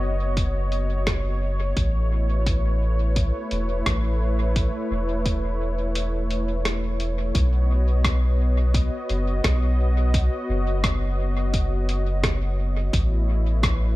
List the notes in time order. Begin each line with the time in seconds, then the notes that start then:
Already playing: F#1 B3 F#4 C#5 D#5
0.37 kick, closed hi-hat
0.72 closed hi-hat
1.07 kick, cross-stick, closed hi-hat
1.77 A1 A3, kick, closed hi-hat
1.92 E4
2.16 B4
2.46 kick, closed hi-hat
3.16 kick, closed hi-hat
3.51 E1, closed hi-hat
3.86 A1, kick, cross-stick, closed hi-hat
4.56 kick, closed hi-hat
4.91 E1
5.26 kick, closed hi-hat
5.95 closed hi-hat
6.31 closed hi-hat
6.65 cross-stick, closed hi-hat
7.00 closed hi-hat
7.34 B1 B3, kick, closed hi-hat
7.56 D#5
7.62 F#4
8.05 kick, cross-stick, closed hi-hat
8.74 kick, closed hi-hat
9.09 F#1, closed hi-hat
9.44 B1, kick, cross-stick, closed hi-hat
10.14 kick, closed hi-hat
10.49 F#1
10.84 kick, cross-stick, closed hi-hat
11.54 kick, closed hi-hat
11.89 closed hi-hat
12.23 kick, cross-stick, closed hi-hat
12.93 A1 A3, kick, closed hi-hat
13.01 E4
13.47 B4
13.63 kick, cross-stick, closed hi-hat